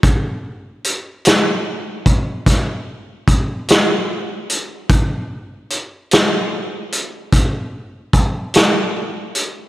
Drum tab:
HH |x-xx-xx-xx-x|x-xx-xx-xx-x|
SD |---o--o--o--|---o-----o--|
BD |o----oo-o---|o-----o-o---|